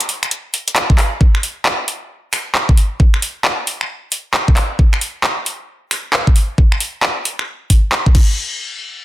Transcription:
0.00 closed hi-hat
0.09 open hi-hat
0.23 finger snap, closed hi-hat
0.31 closed hi-hat
0.54 open hi-hat
0.68 closed hi-hat
0.76 clap, closed hi-hat
0.90 kick
0.98 clap, open hi-hat
1.21 kick
1.35 finger snap
1.43 open hi-hat
1.66 clap
1.88 open hi-hat
2.33 finger snap, open hi-hat
2.55 clap
2.69 kick
2.77 open hi-hat
3.00 kick
3.14 finger snap
3.22 open hi-hat
3.45 clap
3.67 open hi-hat
3.81 finger snap
4.12 open hi-hat
4.34 clap
4.48 kick
4.57 clap, open hi-hat
4.79 kick
4.93 finger snap
5.01 open hi-hat
5.24 clap
5.46 open hi-hat
5.91 finger snap, open hi-hat
6.13 clap
6.27 kick
6.36 open hi-hat
6.58 kick
6.72 finger snap
6.80 open hi-hat
7.03 clap
7.25 open hi-hat
7.39 finger snap
7.70 kick, open hi-hat
7.92 clap
8.06 kick
8.15 kick, crash

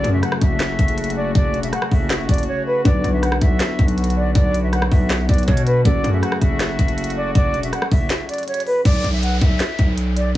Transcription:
Already playing: C#3 F#3 A3 F#4 A4 D5
0.04 F#2, closed hi-hat
0.13 E5
0.23 F#5, cross-stick, closed hi-hat
0.32 cross-stick
0.41 F#1 E5, kick, closed hi-hat
0.60 snare, clap, closed hi-hat
0.79 F#1, kick, closed hi-hat
0.88 closed hi-hat
0.98 closed hi-hat
1.04 closed hi-hat
1.10 closed hi-hat
1.17 D5
1.35 F#1 D5, kick, closed hi-hat
1.54 E1, closed hi-hat
1.63 E5, closed hi-hat
1.73 F#5, cross-stick, closed hi-hat
1.82 cross-stick
1.91 F#1 E5, kick, open hi-hat
2.10 snare, clap
2.29 F#1 D5, kick, closed hi-hat
2.34 closed hi-hat
2.38 closed hi-hat
2.43 closed hi-hat
2.48 C#5
2.67 B4
2.84 B1 D3 F#3 B3 F#4 B4 D5, kick, closed hi-hat
3.04 B1, closed hi-hat
3.13 E5
3.23 F#5, cross-stick, closed hi-hat
3.32 cross-stick
3.41 B1 E5, kick, closed hi-hat
3.60 snare, clap, closed hi-hat
3.79 B1, kick, closed hi-hat
3.88 closed hi-hat
3.98 closed hi-hat
4.04 closed hi-hat
4.10 closed hi-hat
4.16 D5
4.35 B1 D5, kick, closed hi-hat
4.54 closed hi-hat
4.64 E5
4.73 F#5, cross-stick, closed hi-hat
4.82 cross-stick
4.92 B1 E5, kick, open hi-hat
5.10 snare, clap
5.29 B1 D5, kick, closed hi-hat
5.34 closed hi-hat
5.38 closed hi-hat
5.43 closed hi-hat
5.48 B2 C#5, kick, closed hi-hat
5.57 closed hi-hat
5.66 B4, closed hi-hat
5.84 F#1 C#3 F#3 A3 F#4 A4 D5, kick, closed hi-hat
6.04 F#2, closed hi-hat
6.13 E5
6.23 F#5, cross-stick, closed hi-hat
6.32 cross-stick
6.41 F#1 E5, kick, closed hi-hat
6.60 snare, clap, closed hi-hat
6.79 F#1, kick, closed hi-hat
6.88 closed hi-hat
6.98 closed hi-hat
7.04 closed hi-hat
7.10 closed hi-hat
7.17 D5
7.35 F#1 D5, kick, closed hi-hat
7.54 E1, closed hi-hat
7.63 E5, closed hi-hat
7.73 F#5, cross-stick, closed hi-hat
7.82 cross-stick
7.91 F#1 E5, kick, open hi-hat
8.10 snare, clap
8.29 D5, closed hi-hat
8.34 closed hi-hat
8.38 closed hi-hat
8.43 closed hi-hat
8.48 C#5, closed hi-hat
8.54 closed hi-hat
8.60 closed hi-hat
8.67 B4, open hi-hat
8.85 B1 D5, kick, closed hi-hat, crash, downlifter
9.04 B1, closed hi-hat
9.13 E5
9.22 F#5, closed hi-hat
9.41 B1 E5, kick, closed hi-hat
9.60 snare, clap, closed hi-hat
9.79 B1, kick, closed hi-hat
9.98 closed hi-hat
10.17 D5, closed hi-hat

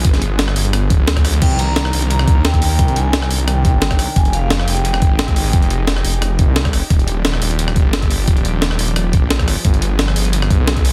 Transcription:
Already playing: F3 B3 G#4
0.05 G1, kick, closed hi-hat
0.14 snare, closed hi-hat
0.22 closed hi-hat
0.39 snare, closed hi-hat
0.48 cross-stick
0.56 G1, open hi-hat
0.65 closed hi-hat
0.73 cross-stick, closed hi-hat
0.90 D1, kick, closed hi-hat
1.00 D2
1.08 snare, closed hi-hat
1.17 kick, cross-stick, closed hi-hat
1.25 cross-stick, open hi-hat
1.34 closed hi-hat
1.42 C2 D#3 D4 A#4 G5, kick, closed hi-hat, crash
1.51 closed hi-hat
1.59 A#5, closed hi-hat
1.76 snare, closed hi-hat
1.85 cross-stick
1.93 C2, open hi-hat
2.02 closed hi-hat
2.10 A#5, closed hi-hat
2.19 cross-stick
2.28 kick, closed hi-hat
2.37 D#2
2.45 G5, snare, closed hi-hat
2.54 kick, closed hi-hat
2.62 open hi-hat
2.79 C2 G5, kick, closed hi-hat
2.88 closed hi-hat
2.96 G#5, closed hi-hat
3.13 snare, closed hi-hat
3.22 cross-stick
3.30 C2, open hi-hat
3.40 closed hi-hat
3.48 G5, cross-stick, closed hi-hat
3.65 kick, closed hi-hat
3.74 G1
3.82 snare, closed hi-hat
3.91 kick, cross-stick, closed hi-hat
3.99 C2, cross-stick, open hi-hat
4.16 F1 D#4 G4 G#4 G#5, kick, closed hi-hat
4.25 closed hi-hat
4.33 F5, closed hi-hat
4.50 snare, closed hi-hat
4.60 cross-stick
4.68 F1 G5, open hi-hat
4.77 closed hi-hat
4.85 closed hi-hat
4.94 cross-stick
5.02 kick, closed hi-hat
5.11 G#1
5.19 snare, closed hi-hat
5.28 kick, closed hi-hat
5.36 open hi-hat
5.53 F1, kick, closed hi-hat
5.62 closed hi-hat
5.70 closed hi-hat
5.87 snare, closed hi-hat
5.97 cross-stick
6.05 F1, open hi-hat
6.14 closed hi-hat
6.22 cross-stick, closed hi-hat
6.39 kick, closed hi-hat
6.48 C2
6.56 snare, closed hi-hat
6.65 kick, cross-stick, closed hi-hat
6.73 F1, cross-stick, open hi-hat
6.90 D#1 F3 D4 G4, kick, closed hi-hat
6.99 closed hi-hat
7.08 closed hi-hat
7.25 snare, closed hi-hat
7.34 cross-stick
7.42 D#1, open hi-hat
7.51 closed hi-hat
7.59 closed hi-hat
7.68 cross-stick
7.76 kick, closed hi-hat
7.85 G1
7.93 snare, closed hi-hat
8.02 kick, closed hi-hat
8.11 open hi-hat
8.28 D#1, kick, closed hi-hat
8.37 closed hi-hat
8.45 closed hi-hat
8.62 snare, closed hi-hat
8.71 cross-stick
8.79 D#1, open hi-hat
8.88 closed hi-hat
8.96 cross-stick, closed hi-hat
9.13 kick, closed hi-hat
9.22 A#1
9.30 snare, closed hi-hat
9.39 kick, cross-stick, closed hi-hat
9.47 G1 B3 G#4, cross-stick, open hi-hat
9.65 G1, kick, closed hi-hat
9.74 closed hi-hat
9.82 closed hi-hat
9.99 snare, closed hi-hat
10.08 cross-stick
10.16 G1, open hi-hat
10.25 closed hi-hat
10.33 closed hi-hat
10.42 cross-stick
10.50 kick, closed hi-hat
10.60 B1
10.67 snare, closed hi-hat
10.77 kick, closed hi-hat
10.85 open hi-hat

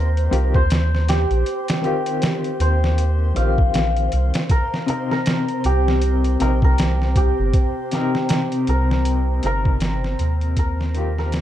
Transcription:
Already playing: D#2 D#3 C4 F4 G4 A#4 C5
0.17 closed hi-hat
0.31 C2 D#3 C4 F4 G4, closed hi-hat
0.54 D#2 C5, kick
0.70 snare, closed hi-hat
0.95 snare
1.09 G4, snare, closed hi-hat
1.30 A#1, closed hi-hat
1.46 closed hi-hat
1.68 snare, closed hi-hat
1.81 D#3 C4 F4 G4, closed hi-hat
2.06 closed hi-hat
2.22 snare, closed hi-hat
2.44 closed hi-hat
2.60 D#2 C5, closed hi-hat
2.84 snare
2.98 closed hi-hat
3.34 A#1 D#3 C4 F4 G4 F5, closed hi-hat
3.58 kick
3.74 snare, closed hi-hat
3.97 closed hi-hat
4.12 C2, closed hi-hat
4.34 snare, closed hi-hat
4.50 C4 A#4 C5, kick, closed hi-hat
4.74 snare
4.86 C3 C4 D#4 A#4, closed hi-hat
5.11 A#4, snare
5.26 snare, closed hi-hat
5.48 closed hi-hat
5.64 C2 G4, closed hi-hat
5.88 snare
6.02 closed hi-hat
6.24 closed hi-hat
6.39 A#1 C3 C4 D#4 A#4, closed hi-hat
6.62 C2 A#4, kick
6.78 snare, closed hi-hat
7.02 snare
7.16 G4, kick, closed hi-hat
7.39 G1
7.53 kick, closed hi-hat
7.91 C3 C4 D#4 A#4, snare, closed hi-hat
8.15 snare
8.29 snare, closed hi-hat
8.52 closed hi-hat
8.67 C2 A#4, closed hi-hat
8.91 snare
9.05 closed hi-hat
9.43 G1 C3 C4 D#4 A#4, closed hi-hat
9.65 kick
9.80 snare, closed hi-hat
10.04 snare
10.19 D#2, closed hi-hat
10.41 closed hi-hat
10.57 A#4, kick, closed hi-hat
10.81 snare
10.94 D#3 C4 F4 G4, closed hi-hat
11.19 A#4, snare
11.32 snare, closed hi-hat

